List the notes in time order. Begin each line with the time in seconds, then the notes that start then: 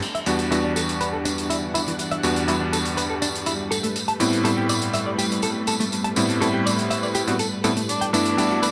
0.02 E3 G3 D4 F#5, closed hi-hat, crash, tambourine
0.15 E5, closed hi-hat
0.26 E2 G3 B3 D4 F#4, closed hi-hat, tambourine
0.39 closed hi-hat, tambourine
0.50 E2 G3 B3 D4 E4 F#4, closed hi-hat, tambourine
0.64 D4
0.76 A4, closed hi-hat, tambourine
0.89 closed hi-hat, tambourine
1.00 B4, closed hi-hat, tambourine
1.13 A4
1.25 D4, closed hi-hat, tambourine
1.38 closed hi-hat, tambourine
1.50 E4, closed hi-hat, tambourine
1.74 E4, closed hi-hat, tambourine
1.86 E3, closed hi-hat, tambourine
1.99 closed hi-hat, tambourine
2.11 E5, closed hi-hat
2.23 E2 G3 B3 D4 F#4, closed hi-hat, tambourine
2.36 closed hi-hat, tambourine
2.47 E2 G3 B3 D4 E4 F#4, closed hi-hat, tambourine
2.61 D4
2.73 A4, closed hi-hat, tambourine
2.85 closed hi-hat, tambourine
2.97 B4, closed hi-hat, tambourine
3.10 A4
3.22 D4, closed hi-hat, tambourine
3.35 closed hi-hat, tambourine
3.46 E4, closed hi-hat, tambourine
3.71 A3 A4 B4, closed hi-hat, tambourine
3.83 A3, closed hi-hat, tambourine
3.95 closed hi-hat, tambourine
4.08 A5, closed hi-hat
4.20 A2 G3 B3 C4 E4, closed hi-hat, tambourine
4.32 closed hi-hat, tambourine
4.43 A2 G3 B3 C4 E4 A4, closed hi-hat, tambourine
4.57 G4
4.69 D5, closed hi-hat, tambourine
4.81 closed hi-hat, tambourine
4.93 E5, closed hi-hat, tambourine
5.06 D5
5.18 G4, closed hi-hat, tambourine
5.31 closed hi-hat, tambourine
5.42 A4, closed hi-hat, tambourine
5.67 A4, closed hi-hat, tambourine
5.80 A3, closed hi-hat, tambourine
5.92 closed hi-hat, tambourine
6.04 A5, closed hi-hat
6.16 A2 G3 B3 C4 E4, closed hi-hat, tambourine
6.29 closed hi-hat, tambourine
6.40 A2 G3 B3 C4 E4 A4, closed hi-hat, tambourine
6.54 G4
6.66 D5, closed hi-hat, tambourine
6.78 closed hi-hat, tambourine
6.90 E5, closed hi-hat, tambourine
7.03 D5, tambourine
7.14 G4, closed hi-hat, tambourine
7.27 A2 G3 B3 C4 F#4, closed hi-hat, tambourine
7.39 A4, closed hi-hat, tambourine
7.64 A2 G3 B3 C4 E4 A4, closed hi-hat, tambourine
7.76 A3, closed hi-hat, tambourine
7.89 G3 D4 E4 A4, closed hi-hat, tambourine
8.01 G5, closed hi-hat
8.13 G2 A3 B3 D4 E4, closed hi-hat, tambourine
8.25 closed hi-hat, tambourine
8.37 G2 A3 B3 D4 E4 G4, closed hi-hat, tambourine
8.50 F#4, tambourine
8.62 B4, closed hi-hat, tambourine